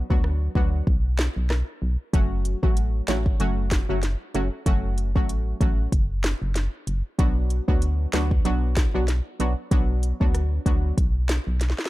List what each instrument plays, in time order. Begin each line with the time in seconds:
0.10 fm bass D2, synth stab F#3 B3 D4 F#4, kick
0.24 cross-stick
0.55 fm bass D2, synth stab F#3 B3 D4 F#4, kick
0.87 fm bass B1, kick
1.19 snare
1.36 fm bass B1
1.50 cross-stick, snare
1.82 fm bass B1
2.13 fm bass F#1, synth stab F#3 A3 C#4 F#4, kick, closed hi-hat
2.45 closed hi-hat
2.63 fm bass A1, synth stab F#3 A3 C#4 F#4, kick
2.77 closed hi-hat
3.08 fm bass A1, synth stab F#3 A3 C#4 F#4, snare, closed hi-hat
3.26 kick
3.40 fm bass F#1, synth stab F#3 A3 C#4 F#4, closed hi-hat
3.71 kick, snare, closed hi-hat
3.89 fm bass F#1, synth stab F#3 A3 C#4 F#4
4.03 snare, closed hi-hat
4.34 fm bass F#1, synth stab F#3 A3 C#4 F#4, closed hi-hat
4.66 fm bass F#1, synth stab F#3 A3 C#4 F#4, kick, closed hi-hat
4.98 closed hi-hat
5.15 fm bass A1, synth stab F#3 A3 C#4 F#4, kick
5.29 closed hi-hat
5.61 fm bass A1, synth stab F#3 A3 C#4 F#4, kick, closed hi-hat
5.92 fm bass F#1, kick, closed hi-hat
6.24 snare, closed hi-hat
6.42 fm bass F#1
6.55 snare, closed hi-hat
6.87 fm bass F#1, closed hi-hat
7.18 fm bass B1, synth stab F#3 B3 D4 F#4, kick, closed hi-hat
7.50 closed hi-hat
7.68 fm bass D2, synth stab F#3 B3 D4 F#4, kick
7.82 closed hi-hat
8.13 fm bass D2, synth stab F#3 B3 D4 F#4, snare, closed hi-hat
8.31 kick
8.45 fm bass B1, synth stab F#3 B3 D4 F#4, closed hi-hat
8.77 kick, snare, closed hi-hat
8.94 fm bass B1, synth stab F#3 B3 D4 F#4
9.08 snare, closed hi-hat
9.39 fm bass B1, synth stab F#3 B3 D4 F#4, closed hi-hat
9.71 fm bass B1, synth stab F#3 B3 D4 F#4, kick, closed hi-hat
10.03 closed hi-hat
10.20 fm bass D2, synth stab F#3 B3 D4 F#4, kick
10.35 cross-stick, closed hi-hat
10.66 fm bass D2, synth stab F#3 B3 D4 F#4, kick, closed hi-hat
10.98 fm bass B1, kick, closed hi-hat
11.29 snare, closed hi-hat
11.47 fm bass B1
11.61 snare, closed hi-hat
11.70 snare
11.79 snare
11.86 snare